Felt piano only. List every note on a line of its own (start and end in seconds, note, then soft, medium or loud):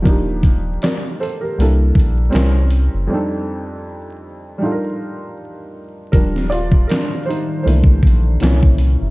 0.02 1.53 F3 medium
0.02 1.53 A#3 medium
0.02 1.54 D4 medium
0.07 1.55 D#4 medium
0.07 0.82 G4 medium
0.83 1.19 A#4 medium
0.83 1.18 D5 medium
1.20 1.40 A4 medium
1.20 1.40 C5 medium
1.41 1.77 G4 soft
1.41 1.77 A#4 medium
1.58 2.28 G3 medium
1.58 2.34 A#3 medium
1.58 2.35 D4 medium
1.58 2.31 E4 medium
1.58 2.35 A4 medium
2.30 3.07 G3 medium
2.30 3.08 C4 medium
2.30 3.08 C#4 medium
2.30 3.09 E4 medium
2.30 3.09 A#4 medium
3.07 4.57 F2 medium
3.07 4.57 G3 medium
3.07 4.58 C4 medium
3.11 4.58 D4 medium
3.11 4.60 D#4 medium
3.11 4.61 A4 medium
4.58 6.09 G3 medium
4.58 6.09 D4 medium
4.58 6.10 D#4 medium
4.63 6.11 F4 medium
4.63 4.71 A4 medium
4.72 6.10 A#4 medium
6.12 7.61 F3 medium
6.12 7.61 G3 soft
6.12 6.49 D4 medium
6.12 6.48 A#4 medium
6.50 6.87 F4 medium
6.50 6.90 D5 loud
6.88 7.25 D4 medium
6.88 7.24 A#4 medium
7.26 7.63 D#4 medium
7.26 7.62 C5 medium
7.63 8.37 E3 soft
7.63 8.37 A3 soft
7.63 8.37 A#3 soft
7.63 8.38 D4 medium
7.63 8.75 E4 medium
7.63 8.74 C5 medium
8.41 9.10 E3 medium
8.41 9.10 A#3 medium
8.41 9.10 C#4 medium